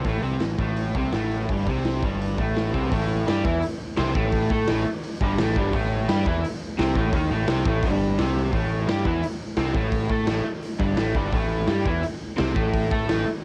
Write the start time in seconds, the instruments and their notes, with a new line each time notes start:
0.04 picked electric bass A1, overdriven electric guitar A2 A3, kick, open hi-hat
0.21 picked electric bass C2, overdriven electric guitar C3 C4, open hi-hat
0.40 picked electric bass A1, overdriven electric guitar A2, snare, open hi-hat
0.58 picked electric bass A1, overdriven electric guitar A2 A3, kick, open hi-hat
0.77 open hi-hat
0.95 picked electric bass C2, overdriven electric guitar C3 C4, kick, open hi-hat
1.12 picked electric bass A1, overdriven electric guitar A2 A3, snare, open hi-hat
1.31 open hi-hat
1.41 snare
1.49 picked electric bass G1, overdriven electric guitar G2 G3, kick, open hi-hat
1.67 picked electric bass C2, overdriven electric guitar C3 C4, kick, open hi-hat
1.77 snare
1.85 snare, open hi-hat
2.03 picked electric bass G1, overdriven electric guitar G2 G3, kick, open hi-hat
2.21 open hi-hat
2.38 picked electric bass A1, overdriven electric guitar A2 A3, kick, open hi-hat
2.56 snare, open hi-hat
2.73 picked electric bass C2, overdriven electric guitar C3 C4, kick, open hi-hat
2.91 picked electric bass A1, overdriven electric guitar A2 A3, kick, open hi-hat
3.26 picked electric bass G2, overdriven electric guitar G3 G4, snare, open hi-hat
3.43 picked electric bass E2, overdriven electric guitar E3 E4, kick
3.62 muted overdriven electric guitar stroke, muted picked electric bass stroke, open hi-hat
3.97 picked electric bass C2, overdriven electric guitar C3 C4, snare, open hi-hat
4.15 picked electric bass A1, overdriven electric guitar A2 A3, kick
4.32 kick, open hi-hat
4.50 picked electric bass A2, overdriven electric guitar A3 A4, kick
4.67 picked electric bass A1, overdriven electric guitar A2 A3, snare, open hi-hat
4.86 muted overdriven electric guitar stroke, muted picked electric bass stroke
5.03 open hi-hat
5.21 picked electric bass G1, overdriven electric guitar G2 G3, kick
5.38 picked electric bass A1, overdriven electric guitar A2 A3, snare, open hi-hat
5.56 picked electric bass G1, overdriven electric guitar G2 G3, kick
5.73 picked electric bass A1, overdriven electric guitar A2 A3, kick, open hi-hat
6.08 picked electric bass G2, overdriven electric guitar G3 G4, snare, open hi-hat
6.26 picked electric bass E2, overdriven electric guitar E3 E4, kick
6.44 muted overdriven electric guitar stroke, muted picked electric bass stroke, open hi-hat
6.78 picked electric bass C2, overdriven electric guitar C3 C4, snare, open hi-hat
6.95 picked electric bass A1, overdriven electric guitar A2 A3, kick
7.13 picked electric bass D#2, overdriven electric guitar D#3 D#4, kick, open hi-hat
7.29 picked electric bass A1, overdriven electric guitar A2 A3
7.47 picked electric bass C2, overdriven electric guitar C3 C4, snare, open hi-hat
7.65 picked electric bass A1, overdriven electric guitar A2 A3, kick
7.82 picked electric bass G1, overdriven electric guitar G2 G3, kick, open hi-hat
8.18 picked electric bass C2, overdriven electric guitar C3 C4, snare, open hi-hat
8.37 snare
8.53 picked electric bass A1, overdriven electric guitar A2 A3, kick, open hi-hat
8.87 picked electric bass G2, overdriven electric guitar G3 G4, snare, open hi-hat
9.04 picked electric bass E2, overdriven electric guitar E3 E4, kick
9.23 muted overdriven electric guitar stroke, muted picked electric bass stroke, open hi-hat
9.57 picked electric bass C2, overdriven electric guitar C3 C4, snare, open hi-hat
9.74 picked electric bass A1, overdriven electric guitar A2 A3, kick
9.92 kick, open hi-hat
10.10 picked electric bass A2, overdriven electric guitar A3 A4, kick
10.26 picked electric bass A1, overdriven electric guitar A2 A3, snare, open hi-hat
10.44 muted picked electric bass stroke, muted overdriven electric guitar stroke
10.63 open hi-hat
10.79 picked electric bass G1, overdriven electric guitar G2 G3, kick
10.95 picked electric bass A1, overdriven electric guitar A2 A3, snare, open hi-hat
11.15 picked electric bass G1, overdriven electric guitar G2 G3, kick, snare
11.32 picked electric bass A1, overdriven electric guitar A2 A3, kick, open hi-hat
11.67 picked electric bass G2, overdriven electric guitar G3 G4, snare, open hi-hat
11.84 picked electric bass E2, overdriven electric guitar E3 E4, kick
12.03 muted overdriven electric guitar stroke, muted picked electric bass stroke, open hi-hat
12.36 picked electric bass C2, overdriven electric guitar C3 C4, snare, open hi-hat
12.54 picked electric bass A1, overdriven electric guitar A2 A3, kick
12.73 kick, open hi-hat
12.90 picked electric bass A2, overdriven electric guitar A3 A4, kick
13.07 picked electric bass A1, overdriven electric guitar A2 A3, snare, open hi-hat
13.27 muted overdriven electric guitar stroke, muted picked electric bass stroke